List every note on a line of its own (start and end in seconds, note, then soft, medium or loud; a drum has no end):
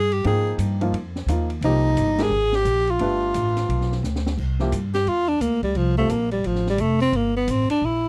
0.00 0.23 G2 medium
0.00 0.14 G#4 medium
0.12 0.25 G4 medium
0.12 ride soft
0.24 0.58 G#2 medium
0.24 0.76 F3 medium
0.24 0.76 A#3 medium
0.24 0.76 D#4 medium
0.24 0.57 G#4 medium
0.24 0.76 G5 medium
0.24 ride medium
0.58 0.92 G2 loud
0.58 hi-hat pedal medium
0.58 ride medium
0.81 0.92 F3 medium
0.81 0.92 A#3 medium
0.81 0.92 D#4 medium
0.81 0.92 F4 medium
0.81 ride soft
0.92 1.26 F2 medium
0.92 ride medium
1.16 snare soft
1.26 1.60 D#2 medium
1.26 1.47 F3 medium
1.26 1.48 A#3 medium
1.26 1.48 D#4 medium
1.26 1.48 F4 medium
1.26 hi-hat pedal medium
1.26 ride medium
1.50 ride soft
1.61 1.95 C2 medium
1.61 2.15 F3 medium
1.61 2.15 A#3 medium
1.61 2.15 D#4 medium
1.61 2.24 D#4 medium
1.61 2.15 G4 medium
1.61 ride medium
1.97 2.29 G1 medium
1.97 hi-hat pedal medium
1.97 ride medium
2.18 2.30 G#3 medium
2.18 2.30 D4 medium
2.18 2.30 G4 medium
2.18 2.30 A#4 medium
2.18 snare medium
2.18 ride medium
2.23 2.57 G#4 loud
2.30 2.64 G#1 medium
2.52 2.92 G4 loud
2.52 snare medium
2.65 2.98 A#1 medium
2.65 hi-hat pedal medium
2.65 ride medium
2.87 4.05 F4 medium
2.87 ride soft
2.99 3.33 G1 medium
2.99 3.96 A3 medium
2.99 3.96 D4 medium
2.99 3.96 G4 medium
2.99 3.96 B4 medium
2.99 ride medium
3.34 3.68 A1 medium
3.34 hi-hat pedal medium
3.34 ride medium
3.57 snare soft
3.57 ride soft
3.69 4.02 B1 medium
3.69 ride medium
3.81 snare soft
3.92 snare soft
4.03 4.37 D2 medium
4.03 snare soft
4.03 hi-hat pedal medium
4.16 snare medium
4.26 snare medium
4.37 4.71 C2 medium
4.37 kick medium
4.37 crash medium
4.59 4.71 F3 medium
4.59 4.71 A#3 medium
4.59 4.71 E4 medium
4.59 4.72 G4 medium
4.59 snare soft
4.72 5.05 G2 medium
4.72 hi-hat pedal medium
4.72 ride medium
4.94 5.10 G4 medium
4.94 snare soft
4.94 ride soft
5.06 5.40 E2 medium
5.06 5.30 F4 medium
5.06 ride medium
5.28 5.43 D4 medium
5.40 5.74 D2 medium
5.40 5.63 A#3 medium
5.40 hi-hat pedal medium
5.40 ride medium
5.63 5.78 G3 medium
5.63 kick medium
5.63 ride soft
5.75 6.08 C2 medium
5.75 5.97 F3 medium
5.75 ride medium
5.98 6.09 G3 medium
5.98 6.12 A3 medium
5.98 6.10 C4 medium
5.98 6.10 F4 medium
5.98 6.10 A4 medium
6.09 6.43 A#1 medium
6.09 6.31 A#3 medium
6.09 hi-hat pedal medium
6.09 ride medium
6.31 6.48 G3 medium
6.31 ride soft
6.44 6.77 A1 medium
6.44 6.68 F3 medium
6.44 ride medium
6.55 snare soft
6.67 6.82 G3 medium
6.67 snare soft
6.78 7.12 F1 medium
6.78 7.01 A3 medium
6.78 hi-hat pedal soft
6.78 ride medium
7.00 7.18 C4 loud
7.00 ride soft
7.12 7.47 G1 medium
7.12 7.36 A#3 medium
7.12 ride medium
7.37 7.52 B3 medium
7.48 7.69 A1 medium
7.48 7.70 C4 medium
7.48 hi-hat pedal medium
7.48 ride medium
7.69 7.87 D4 medium
7.69 muted upright bass stroke soft
7.69 ride medium
7.82 8.09 A#1 medium
7.82 8.09 E4 medium